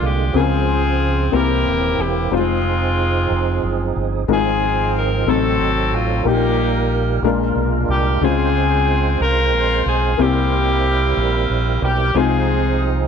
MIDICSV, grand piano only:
0, 0, Header, 1, 2, 480
1, 0, Start_track
1, 0, Tempo, 655738
1, 253, Time_signature, 6, 3, 24, 8
1, 9572, End_track
2, 0, Start_track
2, 0, Title_t, "Grand piano"
2, 0, Program_c, 0, 0
2, 0, Control_c, 0, 64, 127
2, 0, Note_on_c, 0, 46, 55
2, 0, Note_on_c, 0, 56, 52
2, 0, Note_on_c, 0, 58, 51
2, 0, Note_on_c, 0, 62, 51
2, 0, Note_on_c, 0, 65, 51
2, 0, Note_on_c, 0, 70, 62
2, 220, Note_off_c, 0, 56, 0
2, 224, Note_off_c, 0, 58, 0
2, 228, Note_off_c, 0, 65, 0
2, 231, Note_off_c, 0, 70, 0
2, 251, Note_off_c, 0, 62, 0
2, 256, Note_on_c, 0, 56, 54
2, 259, Note_on_c, 0, 60, 54
2, 261, Note_on_c, 0, 49, 57
2, 262, Control_c, 0, 64, 0
2, 263, Note_off_c, 0, 46, 0
2, 264, Note_on_c, 0, 65, 51
2, 267, Note_on_c, 0, 70, 51
2, 308, Note_off_c, 0, 70, 0
2, 312, Note_on_c, 0, 72, 61
2, 374, Control_c, 0, 64, 127
2, 950, Note_off_c, 0, 49, 0
2, 956, Note_off_c, 0, 60, 0
2, 966, Note_off_c, 0, 72, 0
2, 967, Note_on_c, 0, 48, 53
2, 967, Note_on_c, 0, 58, 53
2, 967, Note_on_c, 0, 60, 49
2, 970, Note_on_c, 0, 64, 49
2, 971, Note_on_c, 0, 67, 50
2, 977, Note_off_c, 0, 56, 0
2, 977, Note_on_c, 0, 72, 60
2, 981, Note_off_c, 0, 65, 0
2, 986, Control_c, 0, 64, 0
2, 1102, Control_c, 0, 64, 127
2, 1664, Note_off_c, 0, 48, 0
2, 1682, Note_off_c, 0, 60, 0
2, 1687, Note_on_c, 0, 55, 47
2, 1692, Note_on_c, 0, 63, 53
2, 1693, Note_off_c, 0, 58, 0
2, 1693, Note_off_c, 0, 72, 0
2, 1693, Note_on_c, 0, 60, 52
2, 1695, Note_off_c, 0, 64, 0
2, 1695, Note_off_c, 0, 67, 0
2, 1699, Note_on_c, 0, 65, 54
2, 1704, Note_on_c, 0, 72, 59
2, 1708, Control_c, 0, 64, 0
2, 1735, Note_on_c, 0, 56, 55
2, 1740, Note_off_c, 0, 55, 0
2, 1852, Control_c, 0, 64, 127
2, 3108, Note_off_c, 0, 63, 0
2, 3109, Note_off_c, 0, 60, 0
2, 3112, Note_off_c, 0, 65, 0
2, 3114, Note_off_c, 0, 72, 0
2, 3124, Note_off_c, 0, 56, 0
2, 3135, Note_on_c, 0, 56, 59
2, 3139, Note_on_c, 0, 60, 54
2, 3140, Note_on_c, 0, 44, 57
2, 3140, Note_on_c, 0, 63, 54
2, 3140, Note_on_c, 0, 65, 50
2, 3140, Note_on_c, 0, 70, 54
2, 3150, Control_c, 0, 64, 0
2, 3188, Note_off_c, 0, 70, 0
2, 3195, Note_on_c, 0, 72, 64
2, 3262, Control_c, 0, 64, 127
2, 3831, Note_off_c, 0, 44, 0
2, 3850, Note_off_c, 0, 60, 0
2, 3854, Note_off_c, 0, 63, 0
2, 3856, Note_off_c, 0, 72, 0
2, 3857, Note_on_c, 0, 57, 59
2, 3858, Note_off_c, 0, 56, 0
2, 3860, Note_off_c, 0, 65, 0
2, 3861, Note_on_c, 0, 60, 52
2, 3863, Note_on_c, 0, 48, 54
2, 3865, Note_on_c, 0, 63, 55
2, 3866, Note_on_c, 0, 54, 57
2, 3867, Note_on_c, 0, 72, 62
2, 3869, Control_c, 0, 64, 0
2, 4001, Control_c, 0, 64, 127
2, 4552, Note_off_c, 0, 48, 0
2, 4567, Note_off_c, 0, 63, 0
2, 4574, Note_on_c, 0, 58, 57
2, 4578, Note_on_c, 0, 63, 52
2, 4579, Note_off_c, 0, 57, 0
2, 4581, Note_off_c, 0, 60, 0
2, 4583, Note_off_c, 0, 54, 0
2, 4583, Note_on_c, 0, 46, 55
2, 4584, Note_off_c, 0, 72, 0
2, 4587, Note_on_c, 0, 67, 63
2, 4590, Control_c, 0, 64, 0
2, 4732, Control_c, 0, 64, 127
2, 5271, Note_off_c, 0, 46, 0
2, 5293, Note_off_c, 0, 58, 0
2, 5299, Note_off_c, 0, 63, 0
2, 5302, Note_on_c, 0, 56, 65
2, 5303, Note_off_c, 0, 67, 0
2, 5304, Note_on_c, 0, 46, 65
2, 5304, Note_on_c, 0, 58, 62
2, 5305, Note_on_c, 0, 62, 61
2, 5307, Note_on_c, 0, 70, 74
2, 5309, Control_c, 0, 64, 0
2, 5310, Note_on_c, 0, 65, 57
2, 5417, Control_c, 0, 64, 127
2, 5991, Note_off_c, 0, 46, 0
2, 6002, Note_off_c, 0, 56, 0
2, 6013, Note_on_c, 0, 56, 60
2, 6016, Note_off_c, 0, 65, 0
2, 6016, Note_on_c, 0, 60, 52
2, 6020, Note_off_c, 0, 58, 0
2, 6021, Note_off_c, 0, 62, 0
2, 6022, Note_off_c, 0, 70, 0
2, 6024, Note_on_c, 0, 49, 56
2, 6027, Note_on_c, 0, 65, 54
2, 6029, Control_c, 0, 64, 0
2, 6034, Note_on_c, 0, 72, 62
2, 6164, Control_c, 0, 64, 127
2, 6711, Note_off_c, 0, 49, 0
2, 7424, Note_off_c, 0, 56, 0
2, 7426, Note_off_c, 0, 60, 0
2, 7431, Note_off_c, 0, 65, 0
2, 7435, Note_off_c, 0, 72, 0
2, 7448, Note_on_c, 0, 58, 59
2, 7453, Note_on_c, 0, 60, 53
2, 7454, Note_on_c, 0, 48, 58
2, 7457, Note_on_c, 0, 64, 50
2, 7465, Control_c, 0, 64, 0
2, 7465, Note_on_c, 0, 67, 54
2, 7467, Note_on_c, 0, 72, 68
2, 7603, Control_c, 0, 64, 127
2, 8144, Note_off_c, 0, 48, 0
2, 8860, Note_off_c, 0, 58, 0
2, 8863, Note_off_c, 0, 60, 0
2, 8865, Note_off_c, 0, 64, 0
2, 8869, Note_off_c, 0, 67, 0
2, 8870, Note_off_c, 0, 72, 0
2, 8897, Note_on_c, 0, 60, 57
2, 8899, Note_on_c, 0, 56, 61
2, 8899, Note_on_c, 0, 63, 56
2, 8903, Control_c, 0, 64, 0
2, 8903, Note_on_c, 0, 48, 59
2, 8904, Note_on_c, 0, 65, 58
2, 8911, Note_on_c, 0, 72, 66
2, 9046, Control_c, 0, 64, 127
2, 9572, Note_off_c, 0, 48, 0
2, 9572, Note_off_c, 0, 56, 0
2, 9572, Note_off_c, 0, 60, 0
2, 9572, Note_off_c, 0, 63, 0
2, 9572, Note_off_c, 0, 65, 0
2, 9572, Note_off_c, 0, 72, 0
2, 9572, End_track
0, 0, End_of_file